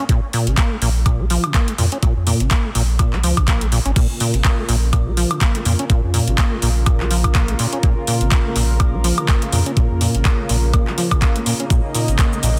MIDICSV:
0, 0, Header, 1, 5, 480
1, 0, Start_track
1, 0, Key_signature, -5, "minor"
1, 0, Tempo, 483871
1, 90, Time_signature, 4, 2, 24, 8
1, 12493, End_track
2, 0, Start_track
2, 0, Title_t, "Analog synth pad"
2, 0, Program_c, 0, 89
2, 3927, Note_on_c, 0, 70, 88
2, 3928, Note_on_c, 0, 58, 74
2, 3928, Note_on_c, 0, 65, 75
2, 3929, Note_on_c, 0, 49, 80
2, 11569, Note_off_c, 0, 65, 0
2, 11596, Note_off_c, 0, 70, 0
2, 11609, Note_on_c, 0, 63, 73
2, 11610, Note_on_c, 0, 75, 89
2, 12493, Note_off_c, 0, 49, 0
2, 12493, Note_off_c, 0, 58, 0
2, 12493, Note_off_c, 0, 63, 0
2, 12493, Note_off_c, 0, 75, 0
2, 12493, End_track
3, 0, Start_track
3, 0, Title_t, "Acid bass"
3, 0, Program_c, 1, 38
3, 91, Note_on_c, 1, 46, 105
3, 202, Note_off_c, 1, 46, 0
3, 331, Note_on_c, 1, 46, 97
3, 467, Note_on_c, 1, 49, 76
3, 482, Note_off_c, 1, 46, 0
3, 553, Note_off_c, 1, 49, 0
3, 571, Note_on_c, 1, 58, 86
3, 707, Note_on_c, 1, 56, 76
3, 722, Note_off_c, 1, 58, 0
3, 764, Note_off_c, 1, 56, 0
3, 811, Note_on_c, 1, 46, 100
3, 885, Note_off_c, 1, 46, 0
3, 1052, Note_on_c, 1, 46, 83
3, 1188, Note_on_c, 1, 58, 95
3, 1203, Note_off_c, 1, 46, 0
3, 1244, Note_off_c, 1, 58, 0
3, 1292, Note_on_c, 1, 53, 100
3, 1427, Note_on_c, 1, 49, 74
3, 1442, Note_off_c, 1, 53, 0
3, 1513, Note_off_c, 1, 49, 0
3, 1531, Note_on_c, 1, 58, 81
3, 1666, Note_on_c, 1, 56, 73
3, 1681, Note_off_c, 1, 58, 0
3, 1723, Note_off_c, 1, 56, 0
3, 1771, Note_on_c, 1, 46, 102
3, 1845, Note_off_c, 1, 46, 0
3, 1907, Note_on_c, 1, 61, 72
3, 1964, Note_off_c, 1, 61, 0
3, 2010, Note_on_c, 1, 46, 103
3, 2122, Note_off_c, 1, 46, 0
3, 2251, Note_on_c, 1, 46, 95
3, 2386, Note_on_c, 1, 49, 77
3, 2401, Note_off_c, 1, 46, 0
3, 2472, Note_off_c, 1, 49, 0
3, 2489, Note_on_c, 1, 58, 82
3, 2625, Note_on_c, 1, 56, 77
3, 2640, Note_off_c, 1, 58, 0
3, 2683, Note_off_c, 1, 56, 0
3, 2729, Note_on_c, 1, 46, 95
3, 2804, Note_off_c, 1, 46, 0
3, 2969, Note_on_c, 1, 46, 81
3, 3104, Note_on_c, 1, 58, 96
3, 3119, Note_off_c, 1, 46, 0
3, 3162, Note_off_c, 1, 58, 0
3, 3209, Note_on_c, 1, 53, 93
3, 3344, Note_on_c, 1, 49, 74
3, 3359, Note_off_c, 1, 53, 0
3, 3431, Note_off_c, 1, 49, 0
3, 3449, Note_on_c, 1, 58, 85
3, 3585, Note_on_c, 1, 56, 74
3, 3600, Note_off_c, 1, 58, 0
3, 3643, Note_off_c, 1, 56, 0
3, 3689, Note_on_c, 1, 46, 97
3, 3764, Note_off_c, 1, 46, 0
3, 3824, Note_on_c, 1, 61, 73
3, 3882, Note_off_c, 1, 61, 0
3, 3929, Note_on_c, 1, 46, 102
3, 4041, Note_off_c, 1, 46, 0
3, 4170, Note_on_c, 1, 46, 102
3, 4305, Note_on_c, 1, 49, 76
3, 4320, Note_off_c, 1, 46, 0
3, 4391, Note_off_c, 1, 49, 0
3, 4409, Note_on_c, 1, 58, 88
3, 4546, Note_on_c, 1, 56, 77
3, 4561, Note_off_c, 1, 58, 0
3, 4603, Note_off_c, 1, 56, 0
3, 4649, Note_on_c, 1, 46, 97
3, 4724, Note_off_c, 1, 46, 0
3, 4889, Note_on_c, 1, 46, 83
3, 5026, Note_on_c, 1, 58, 100
3, 5041, Note_off_c, 1, 46, 0
3, 5083, Note_off_c, 1, 58, 0
3, 5130, Note_on_c, 1, 53, 98
3, 5265, Note_on_c, 1, 49, 74
3, 5280, Note_off_c, 1, 53, 0
3, 5352, Note_off_c, 1, 49, 0
3, 5370, Note_on_c, 1, 58, 83
3, 5506, Note_on_c, 1, 56, 72
3, 5521, Note_off_c, 1, 58, 0
3, 5563, Note_off_c, 1, 56, 0
3, 5609, Note_on_c, 1, 46, 97
3, 5684, Note_off_c, 1, 46, 0
3, 5746, Note_on_c, 1, 61, 70
3, 5803, Note_off_c, 1, 61, 0
3, 5851, Note_on_c, 1, 46, 103
3, 5962, Note_off_c, 1, 46, 0
3, 6090, Note_on_c, 1, 46, 96
3, 6227, Note_on_c, 1, 49, 72
3, 6242, Note_off_c, 1, 46, 0
3, 6312, Note_off_c, 1, 49, 0
3, 6331, Note_on_c, 1, 58, 88
3, 6468, Note_on_c, 1, 56, 80
3, 6483, Note_off_c, 1, 58, 0
3, 6524, Note_off_c, 1, 56, 0
3, 6572, Note_on_c, 1, 46, 99
3, 6646, Note_off_c, 1, 46, 0
3, 6811, Note_on_c, 1, 46, 86
3, 6947, Note_on_c, 1, 58, 101
3, 6962, Note_off_c, 1, 46, 0
3, 7004, Note_off_c, 1, 58, 0
3, 7052, Note_on_c, 1, 53, 96
3, 7186, Note_on_c, 1, 49, 76
3, 7201, Note_off_c, 1, 53, 0
3, 7272, Note_off_c, 1, 49, 0
3, 7293, Note_on_c, 1, 58, 85
3, 7427, Note_on_c, 1, 56, 76
3, 7442, Note_off_c, 1, 58, 0
3, 7484, Note_off_c, 1, 56, 0
3, 7533, Note_on_c, 1, 46, 100
3, 7606, Note_off_c, 1, 46, 0
3, 7668, Note_on_c, 1, 61, 72
3, 7724, Note_off_c, 1, 61, 0
3, 7772, Note_on_c, 1, 46, 109
3, 7883, Note_off_c, 1, 46, 0
3, 8012, Note_on_c, 1, 46, 96
3, 8147, Note_on_c, 1, 49, 77
3, 8162, Note_off_c, 1, 46, 0
3, 8233, Note_off_c, 1, 49, 0
3, 8251, Note_on_c, 1, 58, 83
3, 8386, Note_on_c, 1, 56, 76
3, 8401, Note_off_c, 1, 58, 0
3, 8443, Note_off_c, 1, 56, 0
3, 8490, Note_on_c, 1, 46, 100
3, 8565, Note_off_c, 1, 46, 0
3, 8730, Note_on_c, 1, 46, 81
3, 8865, Note_on_c, 1, 58, 104
3, 8880, Note_off_c, 1, 46, 0
3, 8923, Note_off_c, 1, 58, 0
3, 8969, Note_on_c, 1, 53, 103
3, 9105, Note_on_c, 1, 49, 77
3, 9120, Note_off_c, 1, 53, 0
3, 9192, Note_off_c, 1, 49, 0
3, 9209, Note_on_c, 1, 58, 83
3, 9345, Note_on_c, 1, 56, 72
3, 9360, Note_off_c, 1, 58, 0
3, 9403, Note_off_c, 1, 56, 0
3, 9449, Note_on_c, 1, 46, 97
3, 9524, Note_off_c, 1, 46, 0
3, 9585, Note_on_c, 1, 61, 69
3, 9643, Note_off_c, 1, 61, 0
3, 9689, Note_on_c, 1, 46, 107
3, 9801, Note_off_c, 1, 46, 0
3, 9929, Note_on_c, 1, 46, 96
3, 10065, Note_on_c, 1, 49, 76
3, 10080, Note_off_c, 1, 46, 0
3, 10152, Note_off_c, 1, 49, 0
3, 10169, Note_on_c, 1, 58, 85
3, 10306, Note_on_c, 1, 56, 75
3, 10321, Note_off_c, 1, 58, 0
3, 10363, Note_off_c, 1, 56, 0
3, 10409, Note_on_c, 1, 46, 97
3, 10484, Note_off_c, 1, 46, 0
3, 10650, Note_on_c, 1, 46, 81
3, 10786, Note_on_c, 1, 58, 101
3, 10801, Note_off_c, 1, 46, 0
3, 10843, Note_off_c, 1, 58, 0
3, 10891, Note_on_c, 1, 53, 100
3, 11026, Note_on_c, 1, 49, 76
3, 11041, Note_off_c, 1, 53, 0
3, 11112, Note_off_c, 1, 49, 0
3, 11131, Note_on_c, 1, 58, 86
3, 11266, Note_on_c, 1, 56, 73
3, 11281, Note_off_c, 1, 58, 0
3, 11323, Note_off_c, 1, 56, 0
3, 11371, Note_on_c, 1, 46, 99
3, 11445, Note_off_c, 1, 46, 0
3, 11506, Note_on_c, 1, 61, 73
3, 11563, Note_off_c, 1, 61, 0
3, 11611, Note_on_c, 1, 46, 103
3, 11722, Note_off_c, 1, 46, 0
3, 11851, Note_on_c, 1, 46, 95
3, 11987, Note_on_c, 1, 49, 77
3, 12002, Note_off_c, 1, 46, 0
3, 12072, Note_off_c, 1, 49, 0
3, 12090, Note_on_c, 1, 58, 87
3, 12226, Note_on_c, 1, 56, 77
3, 12241, Note_off_c, 1, 58, 0
3, 12283, Note_off_c, 1, 56, 0
3, 12330, Note_on_c, 1, 46, 97
3, 12404, Note_off_c, 1, 46, 0
3, 12493, End_track
4, 0, Start_track
4, 0, Title_t, "Sub bass"
4, 0, Program_c, 2, 38
4, 90, Note_on_c, 2, 34, 96
4, 189, Note_off_c, 2, 34, 0
4, 465, Note_on_c, 2, 32, 80
4, 542, Note_off_c, 2, 32, 0
4, 810, Note_on_c, 2, 34, 84
4, 1368, Note_off_c, 2, 34, 0
4, 1770, Note_on_c, 2, 41, 100
4, 1869, Note_off_c, 2, 41, 0
4, 2145, Note_on_c, 2, 41, 80
4, 2313, Note_off_c, 2, 41, 0
4, 2385, Note_on_c, 2, 32, 82
4, 2462, Note_off_c, 2, 32, 0
4, 2730, Note_on_c, 2, 34, 88
4, 3048, Note_off_c, 2, 34, 0
4, 3105, Note_on_c, 2, 34, 102
4, 3204, Note_off_c, 2, 34, 0
4, 3210, Note_on_c, 2, 37, 82
4, 3309, Note_off_c, 2, 37, 0
4, 3346, Note_on_c, 2, 34, 87
4, 3768, Note_off_c, 2, 34, 0
4, 3824, Note_on_c, 2, 32, 98
4, 3902, Note_off_c, 2, 32, 0
4, 3930, Note_on_c, 2, 34, 92
4, 4029, Note_off_c, 2, 34, 0
4, 4306, Note_on_c, 2, 32, 81
4, 4382, Note_off_c, 2, 32, 0
4, 4650, Note_on_c, 2, 34, 84
4, 5208, Note_off_c, 2, 34, 0
4, 5612, Note_on_c, 2, 41, 98
4, 5710, Note_off_c, 2, 41, 0
4, 5986, Note_on_c, 2, 41, 76
4, 6154, Note_off_c, 2, 41, 0
4, 6225, Note_on_c, 2, 32, 84
4, 6302, Note_off_c, 2, 32, 0
4, 6571, Note_on_c, 2, 34, 84
4, 6888, Note_off_c, 2, 34, 0
4, 6947, Note_on_c, 2, 34, 102
4, 7486, Note_off_c, 2, 34, 0
4, 7769, Note_on_c, 2, 34, 92
4, 7869, Note_off_c, 2, 34, 0
4, 8146, Note_on_c, 2, 32, 80
4, 8222, Note_off_c, 2, 32, 0
4, 8491, Note_on_c, 2, 34, 84
4, 9048, Note_off_c, 2, 34, 0
4, 9451, Note_on_c, 2, 41, 97
4, 9550, Note_off_c, 2, 41, 0
4, 9826, Note_on_c, 2, 41, 83
4, 9994, Note_off_c, 2, 41, 0
4, 10067, Note_on_c, 2, 32, 85
4, 10143, Note_off_c, 2, 32, 0
4, 10411, Note_on_c, 2, 34, 86
4, 10643, Note_off_c, 2, 34, 0
4, 10649, Note_on_c, 2, 46, 99
4, 10749, Note_off_c, 2, 46, 0
4, 11610, Note_on_c, 2, 34, 94
4, 11709, Note_off_c, 2, 34, 0
4, 11986, Note_on_c, 2, 32, 80
4, 12062, Note_off_c, 2, 32, 0
4, 12330, Note_on_c, 2, 34, 83
4, 12493, Note_off_c, 2, 34, 0
4, 12493, End_track
5, 0, Start_track
5, 0, Title_t, "Drums"
5, 90, Note_on_c, 9, 36, 119
5, 91, Note_on_c, 9, 42, 68
5, 189, Note_off_c, 9, 36, 0
5, 190, Note_off_c, 9, 42, 0
5, 330, Note_on_c, 9, 46, 93
5, 429, Note_off_c, 9, 46, 0
5, 466, Note_on_c, 9, 42, 49
5, 565, Note_off_c, 9, 42, 0
5, 570, Note_on_c, 9, 36, 116
5, 570, Note_on_c, 9, 39, 118
5, 570, Note_on_c, 9, 42, 69
5, 669, Note_off_c, 9, 36, 0
5, 669, Note_off_c, 9, 39, 0
5, 669, Note_off_c, 9, 42, 0
5, 810, Note_on_c, 9, 46, 82
5, 909, Note_off_c, 9, 46, 0
5, 1050, Note_on_c, 9, 36, 110
5, 1050, Note_on_c, 9, 42, 65
5, 1050, Note_on_c, 9, 76, 62
5, 1149, Note_off_c, 9, 36, 0
5, 1149, Note_off_c, 9, 42, 0
5, 1149, Note_off_c, 9, 76, 0
5, 1290, Note_on_c, 9, 46, 97
5, 1389, Note_off_c, 9, 46, 0
5, 1425, Note_on_c, 9, 42, 51
5, 1425, Note_on_c, 9, 76, 75
5, 1525, Note_off_c, 9, 42, 0
5, 1525, Note_off_c, 9, 76, 0
5, 1530, Note_on_c, 9, 36, 109
5, 1530, Note_on_c, 9, 39, 112
5, 1530, Note_on_c, 9, 42, 68
5, 1629, Note_off_c, 9, 36, 0
5, 1629, Note_off_c, 9, 42, 0
5, 1630, Note_off_c, 9, 39, 0
5, 1666, Note_on_c, 9, 42, 52
5, 1765, Note_off_c, 9, 42, 0
5, 1770, Note_on_c, 9, 46, 89
5, 1869, Note_off_c, 9, 46, 0
5, 1905, Note_on_c, 9, 42, 50
5, 2004, Note_off_c, 9, 42, 0
5, 2009, Note_on_c, 9, 42, 66
5, 2010, Note_on_c, 9, 36, 113
5, 2108, Note_off_c, 9, 42, 0
5, 2109, Note_off_c, 9, 36, 0
5, 2249, Note_on_c, 9, 46, 89
5, 2348, Note_off_c, 9, 46, 0
5, 2384, Note_on_c, 9, 42, 53
5, 2483, Note_off_c, 9, 42, 0
5, 2489, Note_on_c, 9, 39, 116
5, 2489, Note_on_c, 9, 42, 68
5, 2490, Note_on_c, 9, 36, 115
5, 2588, Note_off_c, 9, 39, 0
5, 2588, Note_off_c, 9, 42, 0
5, 2589, Note_off_c, 9, 36, 0
5, 2729, Note_on_c, 9, 46, 91
5, 2828, Note_off_c, 9, 46, 0
5, 2968, Note_on_c, 9, 42, 68
5, 2968, Note_on_c, 9, 76, 62
5, 2970, Note_on_c, 9, 36, 105
5, 3068, Note_off_c, 9, 42, 0
5, 3068, Note_off_c, 9, 76, 0
5, 3069, Note_off_c, 9, 36, 0
5, 3105, Note_on_c, 9, 39, 37
5, 3204, Note_off_c, 9, 39, 0
5, 3209, Note_on_c, 9, 46, 96
5, 3308, Note_off_c, 9, 46, 0
5, 3345, Note_on_c, 9, 36, 60
5, 3345, Note_on_c, 9, 42, 52
5, 3345, Note_on_c, 9, 76, 73
5, 3444, Note_off_c, 9, 42, 0
5, 3444, Note_off_c, 9, 76, 0
5, 3445, Note_off_c, 9, 36, 0
5, 3450, Note_on_c, 9, 36, 111
5, 3450, Note_on_c, 9, 39, 114
5, 3450, Note_on_c, 9, 42, 66
5, 3549, Note_off_c, 9, 36, 0
5, 3549, Note_off_c, 9, 39, 0
5, 3549, Note_off_c, 9, 42, 0
5, 3584, Note_on_c, 9, 42, 57
5, 3684, Note_off_c, 9, 42, 0
5, 3689, Note_on_c, 9, 46, 85
5, 3789, Note_off_c, 9, 46, 0
5, 3825, Note_on_c, 9, 42, 51
5, 3924, Note_off_c, 9, 42, 0
5, 3929, Note_on_c, 9, 42, 69
5, 3929, Note_on_c, 9, 49, 75
5, 3930, Note_on_c, 9, 36, 118
5, 4029, Note_off_c, 9, 36, 0
5, 4029, Note_off_c, 9, 42, 0
5, 4029, Note_off_c, 9, 49, 0
5, 4169, Note_on_c, 9, 46, 95
5, 4268, Note_off_c, 9, 46, 0
5, 4304, Note_on_c, 9, 42, 54
5, 4404, Note_off_c, 9, 42, 0
5, 4409, Note_on_c, 9, 42, 67
5, 4410, Note_on_c, 9, 36, 111
5, 4410, Note_on_c, 9, 39, 118
5, 4508, Note_off_c, 9, 42, 0
5, 4509, Note_off_c, 9, 36, 0
5, 4509, Note_off_c, 9, 39, 0
5, 4649, Note_on_c, 9, 46, 86
5, 4748, Note_off_c, 9, 46, 0
5, 4889, Note_on_c, 9, 42, 67
5, 4889, Note_on_c, 9, 76, 65
5, 4890, Note_on_c, 9, 36, 110
5, 4988, Note_off_c, 9, 42, 0
5, 4988, Note_off_c, 9, 76, 0
5, 4989, Note_off_c, 9, 36, 0
5, 5130, Note_on_c, 9, 46, 105
5, 5229, Note_off_c, 9, 46, 0
5, 5265, Note_on_c, 9, 42, 51
5, 5265, Note_on_c, 9, 76, 75
5, 5364, Note_off_c, 9, 42, 0
5, 5364, Note_off_c, 9, 76, 0
5, 5370, Note_on_c, 9, 36, 113
5, 5370, Note_on_c, 9, 39, 120
5, 5370, Note_on_c, 9, 42, 66
5, 5469, Note_off_c, 9, 36, 0
5, 5469, Note_off_c, 9, 39, 0
5, 5469, Note_off_c, 9, 42, 0
5, 5505, Note_on_c, 9, 42, 56
5, 5605, Note_off_c, 9, 42, 0
5, 5609, Note_on_c, 9, 46, 92
5, 5708, Note_off_c, 9, 46, 0
5, 5745, Note_on_c, 9, 42, 54
5, 5844, Note_off_c, 9, 42, 0
5, 5850, Note_on_c, 9, 36, 125
5, 5850, Note_on_c, 9, 42, 64
5, 5949, Note_off_c, 9, 36, 0
5, 5949, Note_off_c, 9, 42, 0
5, 6089, Note_on_c, 9, 46, 102
5, 6188, Note_off_c, 9, 46, 0
5, 6225, Note_on_c, 9, 42, 52
5, 6325, Note_off_c, 9, 42, 0
5, 6330, Note_on_c, 9, 36, 120
5, 6330, Note_on_c, 9, 42, 65
5, 6331, Note_on_c, 9, 39, 123
5, 6429, Note_off_c, 9, 36, 0
5, 6429, Note_off_c, 9, 42, 0
5, 6430, Note_off_c, 9, 39, 0
5, 6569, Note_on_c, 9, 46, 91
5, 6668, Note_off_c, 9, 46, 0
5, 6808, Note_on_c, 9, 42, 68
5, 6808, Note_on_c, 9, 76, 66
5, 6810, Note_on_c, 9, 36, 116
5, 6908, Note_off_c, 9, 42, 0
5, 6908, Note_off_c, 9, 76, 0
5, 6909, Note_off_c, 9, 36, 0
5, 6945, Note_on_c, 9, 39, 39
5, 7044, Note_off_c, 9, 39, 0
5, 7049, Note_on_c, 9, 46, 105
5, 7149, Note_off_c, 9, 46, 0
5, 7185, Note_on_c, 9, 42, 53
5, 7185, Note_on_c, 9, 76, 74
5, 7186, Note_on_c, 9, 36, 64
5, 7284, Note_off_c, 9, 42, 0
5, 7284, Note_off_c, 9, 76, 0
5, 7285, Note_off_c, 9, 36, 0
5, 7289, Note_on_c, 9, 39, 120
5, 7289, Note_on_c, 9, 42, 67
5, 7290, Note_on_c, 9, 36, 126
5, 7388, Note_off_c, 9, 42, 0
5, 7389, Note_off_c, 9, 36, 0
5, 7389, Note_off_c, 9, 39, 0
5, 7424, Note_on_c, 9, 42, 53
5, 7523, Note_off_c, 9, 42, 0
5, 7529, Note_on_c, 9, 46, 95
5, 7628, Note_off_c, 9, 46, 0
5, 7664, Note_on_c, 9, 42, 52
5, 7763, Note_off_c, 9, 42, 0
5, 7769, Note_on_c, 9, 42, 62
5, 7770, Note_on_c, 9, 36, 127
5, 7868, Note_off_c, 9, 42, 0
5, 7869, Note_off_c, 9, 36, 0
5, 8009, Note_on_c, 9, 46, 100
5, 8108, Note_off_c, 9, 46, 0
5, 8143, Note_on_c, 9, 42, 48
5, 8242, Note_off_c, 9, 42, 0
5, 8248, Note_on_c, 9, 42, 65
5, 8249, Note_on_c, 9, 36, 126
5, 8249, Note_on_c, 9, 39, 120
5, 8347, Note_off_c, 9, 42, 0
5, 8348, Note_off_c, 9, 39, 0
5, 8349, Note_off_c, 9, 36, 0
5, 8488, Note_on_c, 9, 46, 99
5, 8587, Note_off_c, 9, 46, 0
5, 8728, Note_on_c, 9, 42, 63
5, 8728, Note_on_c, 9, 76, 67
5, 8729, Note_on_c, 9, 36, 123
5, 8828, Note_off_c, 9, 42, 0
5, 8828, Note_off_c, 9, 76, 0
5, 8829, Note_off_c, 9, 36, 0
5, 8969, Note_on_c, 9, 46, 109
5, 9068, Note_off_c, 9, 46, 0
5, 9105, Note_on_c, 9, 42, 51
5, 9105, Note_on_c, 9, 76, 80
5, 9204, Note_off_c, 9, 42, 0
5, 9204, Note_off_c, 9, 76, 0
5, 9209, Note_on_c, 9, 36, 122
5, 9210, Note_on_c, 9, 39, 117
5, 9210, Note_on_c, 9, 42, 60
5, 9308, Note_off_c, 9, 36, 0
5, 9309, Note_off_c, 9, 39, 0
5, 9309, Note_off_c, 9, 42, 0
5, 9346, Note_on_c, 9, 42, 51
5, 9445, Note_off_c, 9, 42, 0
5, 9449, Note_on_c, 9, 46, 99
5, 9548, Note_off_c, 9, 46, 0
5, 9585, Note_on_c, 9, 42, 48
5, 9685, Note_off_c, 9, 42, 0
5, 9689, Note_on_c, 9, 36, 127
5, 9690, Note_on_c, 9, 42, 60
5, 9788, Note_off_c, 9, 36, 0
5, 9789, Note_off_c, 9, 42, 0
5, 9929, Note_on_c, 9, 46, 104
5, 10028, Note_off_c, 9, 46, 0
5, 10065, Note_on_c, 9, 42, 47
5, 10164, Note_off_c, 9, 42, 0
5, 10169, Note_on_c, 9, 36, 118
5, 10169, Note_on_c, 9, 39, 118
5, 10169, Note_on_c, 9, 42, 62
5, 10268, Note_off_c, 9, 36, 0
5, 10268, Note_off_c, 9, 42, 0
5, 10269, Note_off_c, 9, 39, 0
5, 10409, Note_on_c, 9, 46, 93
5, 10508, Note_off_c, 9, 46, 0
5, 10649, Note_on_c, 9, 36, 120
5, 10650, Note_on_c, 9, 42, 64
5, 10650, Note_on_c, 9, 76, 71
5, 10748, Note_off_c, 9, 36, 0
5, 10749, Note_off_c, 9, 42, 0
5, 10749, Note_off_c, 9, 76, 0
5, 10786, Note_on_c, 9, 39, 35
5, 10885, Note_off_c, 9, 39, 0
5, 10890, Note_on_c, 9, 46, 108
5, 10989, Note_off_c, 9, 46, 0
5, 11025, Note_on_c, 9, 36, 64
5, 11026, Note_on_c, 9, 42, 48
5, 11026, Note_on_c, 9, 76, 82
5, 11124, Note_off_c, 9, 36, 0
5, 11125, Note_off_c, 9, 42, 0
5, 11125, Note_off_c, 9, 76, 0
5, 11129, Note_on_c, 9, 36, 122
5, 11130, Note_on_c, 9, 42, 61
5, 11131, Note_on_c, 9, 39, 114
5, 11228, Note_off_c, 9, 36, 0
5, 11230, Note_off_c, 9, 39, 0
5, 11230, Note_off_c, 9, 42, 0
5, 11266, Note_on_c, 9, 42, 52
5, 11365, Note_off_c, 9, 42, 0
5, 11370, Note_on_c, 9, 46, 97
5, 11469, Note_off_c, 9, 46, 0
5, 11506, Note_on_c, 9, 42, 48
5, 11605, Note_off_c, 9, 42, 0
5, 11609, Note_on_c, 9, 36, 116
5, 11609, Note_on_c, 9, 42, 62
5, 11615, Note_on_c, 9, 69, 43
5, 11708, Note_off_c, 9, 42, 0
5, 11709, Note_off_c, 9, 36, 0
5, 11714, Note_off_c, 9, 69, 0
5, 11850, Note_on_c, 9, 46, 93
5, 11856, Note_on_c, 9, 69, 71
5, 11949, Note_off_c, 9, 46, 0
5, 11955, Note_off_c, 9, 69, 0
5, 11985, Note_on_c, 9, 42, 45
5, 11991, Note_on_c, 9, 69, 32
5, 12085, Note_off_c, 9, 42, 0
5, 12089, Note_on_c, 9, 36, 122
5, 12090, Note_off_c, 9, 69, 0
5, 12090, Note_on_c, 9, 39, 112
5, 12090, Note_on_c, 9, 42, 61
5, 12095, Note_on_c, 9, 69, 43
5, 12188, Note_off_c, 9, 36, 0
5, 12189, Note_off_c, 9, 39, 0
5, 12189, Note_off_c, 9, 42, 0
5, 12194, Note_off_c, 9, 69, 0
5, 12230, Note_on_c, 9, 69, 30
5, 12329, Note_off_c, 9, 69, 0
5, 12329, Note_on_c, 9, 46, 89
5, 12335, Note_on_c, 9, 69, 78
5, 12428, Note_off_c, 9, 46, 0
5, 12434, Note_off_c, 9, 69, 0
5, 12493, End_track
0, 0, End_of_file